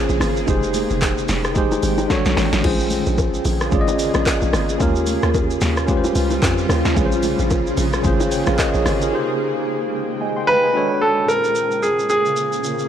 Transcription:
Already playing: ambient pad C#3 A#3 G#4, tine electric piano C#4 F4 G#4 C5
0.09 log drum bass A#1, shaker
0.20 log drum bass G#1, cross-stick, open hi-hat, high bongo, low bongo, shaker
0.37 shaker
0.46 log drum bass F1, ambient pad D#3 G#3 G5, tine electric piano D#4 G4 G#4 C5, kick, low conga, shaker
0.63 shaker
0.74 open hi-hat, low conga, shaker
0.90 log drum bass F1, shaker
1.02 kick, clap, high bongo, shaker
1.18 shaker
1.28 log drum bass F1, snare, open hi-hat, shaker
1.44 cross-stick, shaker
1.54 tine electric piano D#4 G4 G#4 C5, kick, low conga, shaker
1.72 low bongo, shaker
1.83 log drum bass G#1, open hi-hat, shaker
1.98 low bongo, shaker
2.08 tine electric piano D4 F#4 A4 C#5, kick, snare, high bongo, shaker
2.25 log drum bass B1, snare, shaker
2.37 log drum bass A1, snare, open hi-hat, high bongo, low bongo, shaker
2.53 log drum bass A1, snare, shaker
2.62 log drum bass A#1, ambient pad C#3 A#3 G#4, tine electric piano C#4 F4 G#4 C5, kick, crash, low conga
2.79 shaker
2.90 open hi-hat, low conga, shaker
3.07 log drum bass A#1, shaker
3.18 kick, high bongo, shaker
3.34 shaker
3.45 log drum bass A#1, open hi-hat, shaker
3.61 cross-stick, shaker
3.70 log drum bass G#1, tine electric piano C#4 F4 G#4 D5, kick, low conga, shaker
3.81 tine electric piano D#5
3.88 low bongo, shaker
3.99 open hi-hat, shaker
4.14 log drum bass A#1, cross-stick, low bongo, shaker
4.26 kick, clap, high bongo, shaker
4.41 log drum bass A#1, shaker
4.53 log drum bass G#1, cross-stick, open hi-hat, high bongo, low bongo, shaker
4.69 shaker
4.78 log drum bass D#2, ambient pad C#3 G3 F4, tine electric piano C#4 F4 G4 A#4, kick, low conga, shaker
4.96 shaker
5.07 open hi-hat, low conga, shaker
5.23 log drum bass D#2, cross-stick, shaker
5.34 kick, high bongo, shaker
5.50 shaker
5.61 log drum bass D#2, snare, open hi-hat, shaker
5.77 cross-stick, shaker
5.87 tine electric piano C#4 F4 G4, kick, low conga, shaker
5.91 tine electric piano B4
5.97 tine electric piano C5
6.04 low bongo, shaker
6.15 log drum bass C#2, open hi-hat, shaker
6.30 low bongo, shaker
6.43 log drum bass F2, kick, clap, high bongo, shaker
6.58 shaker
6.69 log drum bass D#2, cross-stick, open hi-hat, high bongo, low bongo, shaker
6.85 log drum bass D#2, snare, shaker
6.95 log drum bass A#1, ambient pad A#3 G#4, tine electric piano C#4 F4 G#4 B4, kick, low conga, shaker
7.05 tine electric piano C5
7.12 shaker
7.23 open hi-hat, low conga, shaker
7.39 log drum bass A#1, shaker
7.51 kick, high bongo, shaker
7.67 shaker
7.77 log drum bass A#1, open hi-hat, shaker
7.93 cross-stick, shaker
8.03 log drum bass G#1, tine electric piano C#4 F4 G#4 C5, kick, low conga, shaker
8.20 low bongo, shaker
8.32 tine electric piano C#5 G5, open hi-hat, shaker
8.47 log drum bass A#1, tine electric piano C5 F5, cross-stick, low bongo, shaker
8.59 tine electric piano A#4 D#5, kick, clap, high bongo, shaker
8.74 log drum bass A#1, tine electric piano G#4 C#5, shaker
8.86 log drum bass G#1, tine electric piano G4 C5, cross-stick, open hi-hat, high bongo, low bongo, shaker
9.02 tine electric piano F4 A#4, shaker
9.11 ambient pad D#3 G#3 G5, tine electric piano D#4 G4 G#4 C5
10.21 tine electric piano D#5 G#5
10.37 tine electric piano G5 C6
10.47 grand piano B4, tine electric piano F5 A#5
10.64 tine electric piano D#5 G#5
10.73 tine electric piano D4 F#4 A4 C#5
11.01 grand piano A4
11.25 tine electric piano A#2 C#4, ambient pad C#3 A#3 G#4, grand piano A#4, shaker
11.33 tine electric piano C5
11.44 shaker
11.55 shaker
11.71 shaker
11.83 grand piano G#4, shaker
11.99 shaker
12.10 grand piano G#4, shaker
12.26 shaker
12.36 shaker
12.53 shaker
12.62 tine electric piano A#2 C#4 F4 G#4, shaker
12.66 tine electric piano A#4
12.79 shaker

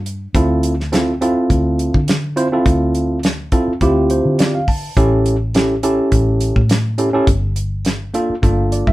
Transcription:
Already playing: fingered electric bass G2
0.06 closed hi-hat
0.34 fingered electric bass D2, tine electric piano C4 E4 F4 A4, kick, closed hi-hat
0.63 closed hi-hat
0.80 snare
0.92 tine electric piano C4 E4 F4 A4, snare, closed hi-hat
1.21 tine electric piano C4 E4 F4 A4, closed hi-hat
1.50 fingered electric bass D2, kick, closed hi-hat
1.79 closed hi-hat
1.94 fingered electric bass D3, kick
2.08 snare, closed hi-hat
2.36 tine electric piano C4 E4 F4 C5, closed hi-hat
2.52 tine electric piano C4 E4 F4 A4
2.65 fingered electric bass D2, kick, closed hi-hat
2.95 closed hi-hat
3.23 snare, closed hi-hat
3.52 tine electric piano C4 E4 F4 A4, kick, closed hi-hat
3.68 muted fingered electric bass stroke
3.81 fingered electric bass D2, tine electric piano C4 E4 F4 G4, kick, closed hi-hat
4.10 tine electric piano C5, closed hi-hat
4.25 fingered electric bass D3
4.39 tine electric piano D5, snare, closed hi-hat
4.55 tine electric piano F5
4.68 tine electric piano A5, kick, open hi-hat
4.97 fingered electric bass A1, tine electric piano C#4 E4 G4 A4, kick, closed hi-hat
5.26 closed hi-hat
5.54 tine electric piano C#4 E4 G4 A4, snare, closed hi-hat
5.83 tine electric piano C#4 E4 G4 A4, closed hi-hat
6.12 fingered electric bass A1, kick, closed hi-hat
6.41 closed hi-hat
6.56 fingered electric bass A2, kick
6.69 snare, closed hi-hat
6.98 tine electric piano C#4 E4 G4 A4, closed hi-hat
7.13 tine electric piano C#4 E4 G4 A4
7.27 fingered electric bass G1, kick, closed hi-hat
7.56 closed hi-hat
7.85 snare, closed hi-hat
8.14 tine electric piano A#3 D4 F4 A4, closed hi-hat
8.30 muted fingered electric bass stroke
8.43 fingered electric bass G1, tine electric piano A#3 D4 F4 A4, kick, closed hi-hat
8.72 tine electric piano D5, closed hi-hat
8.87 fingered electric bass G2, tine electric piano E5, kick

